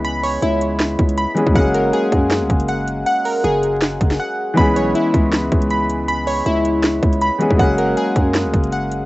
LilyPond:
<<
  \new Staff \with { instrumentName = "Synth keys" } { \time 4/4 \key cis \dorian \tempo 4 = 159 b''8 cis''8 e'2 b''4 | fis''8 ais'8 gis'2 fis''4 | fis''8 ais'8 gis'2 fis''4 | b''8 cis''8 e'2 b''4 |
b''8 cis''8 e'2 b''4 | fis''8 ais'8 gis'2 fis''4 | }
  \new Staff \with { instrumentName = "Felt piano" } { \time 4/4 \key cis \dorian <e gis b cis' gis'>2.~ <e gis b cis' gis'>8 <e gis b cis' gis'>8 | <fis gis ais cis' gis'>1~ | <fis gis ais cis' gis'>1 | <e gis b cis' gis'>1~ |
<e gis b cis' gis'>2.~ <e gis b cis' gis'>8 <e gis b cis' gis'>8 | <fis gis ais cis' gis'>1 | }
  \new Staff \with { instrumentName = "808-style bass" } { \clef bass \time 4/4 \key cis \dorian cis,4 cis,4. cis,8. r8 cis,16 | fis,,4 r8 fis,8. cis,16 fis,,4. | r4 fis,,4. fis,,8 r4 | cis,8 b,,8 r8 cis,4 cis,4.~ |
cis,4 cis,4. cis,8. r8 cis,16 | fis,,4 r8 fis,8. cis,16 fis,,4. | }
  \new DrumStaff \with { instrumentName = "Drums" } \drummode { \time 4/4 hh8 hho8 hh8 hh8 <hc hh sn>8 <hh bd>16 hh16 hh8 hh16 bd16 | <hh bd>8 hh8 hh8 <hh bd>8 <hc hh sn>8 <hh bd>16 hh16 hh8 hh8 | hh8 hho8 hh8 hh8 <hc hh sn>8 <hh bd>16 sn16 r4 | <hh bd>8 hh8 hh8 <hh bd>8 <hc hh sn>8 <hh bd>16 hh16 hh8 hh8 |
hh8 hho8 hh8 hh8 <hc hh sn>8 <hh bd>16 hh16 hh8 hh16 bd16 | <hh bd>8 hh8 hh8 <hh bd>8 <hc hh sn>8 <hh bd>16 hh16 hh8 hh8 | }
>>